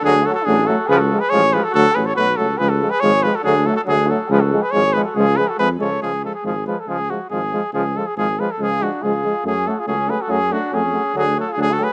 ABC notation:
X:1
M:2/4
L:1/16
Q:1/4=140
K:none
V:1 name="Trumpet"
^G2 A A G2 A2 | B A2 B ^c2 B A | A2 B ^c B2 A2 | B A2 B ^c2 B A |
^G2 A A G2 A2 | B A2 B ^c2 B A | ^G2 B A B2 ^c2 | ^G2 A G G2 B A |
^G2 ^F2 G4 | ^G2 A G G2 B A | ^G2 ^F2 G4 | ^G2 A G G2 B A |
^G2 ^F2 G4 | ^G2 A G G A B z |]
V:2 name="Flugelhorn"
D2 ^F F D2 F2 | ^G ^F2 G G2 G F | ^F2 ^G A F2 F2 | ^G ^F2 G G2 G F |
D2 ^F F D2 F2 | ^G ^F2 G G2 G F | ^E2 ^G ^F G2 A2 | z8 |
z8 | z8 | ^E2 D2 E4 | ^C2 ^F ^E C2 ^G F |
^C2 D2 C4 | D2 ^F ^E D F ^G z |]
V:3 name="Euphonium" clef=bass
A,2 A,2 A,2 A,2 | ^G,2 G,2 G,2 G,2 | A,2 A,2 A,2 A,2 | ^G,2 G,2 G,2 G,2 |
A,2 A,2 A,2 A,2 | ^G,2 G,2 G,2 G,2 | ^G,2 G,2 G,2 G,2 | ^G,2 G,2 G,2 G,2 |
^G,2 G,2 G,2 G,2 | ^G,2 G,2 G,2 G,2 | ^G,2 G,2 G,2 G,2 | A,2 A,2 A,2 A,2 |
A,2 A,2 A,2 A,2 | A,2 A,2 A,2 A,2 |]
V:4 name="Trombone" clef=bass
^F,2 F,2 F,2 F,2 | ^E,2 E,2 E,2 E,2 | ^F,2 F,2 F,2 F,2 | ^E,2 E,2 E,2 E,2 |
^F,2 F,2 F,2 F,2 | ^E,2 E,2 E,2 E,2 | ^E,2 E,2 E,2 E,2 | ^E,2 E,2 E,2 E,2 |
^E,2 E,2 E,2 E,2 | ^E,2 E,2 E,2 E,2 | ^E,2 E,2 E,2 E,2 | ^F,2 F,2 F,2 F,2 |
^F,2 F,2 F,2 F,2 | ^F,2 F,2 F,2 F,2 |]
V:5 name="Tuba" clef=bass
D,,4 A,,,4 | ^C,,4 A,,,4 | D,,2 A,,,2 B,,,2 ^C,,2 | ^C,,4 ^G,,,4 |
D,,4 D,,4 | ^C,,4 ^G,,,4 | ^C,,4 ^E,,2 C,,2 | ^C,,4 ^G,,,4 |
^C,,4 ^G,,,4 | ^C,,4 ^G,,,4 | ^C,,4 C,,4 | ^F,,4 ^C,,4 |
^F,,4 ^E,,4 | D,,4 D,,4 |]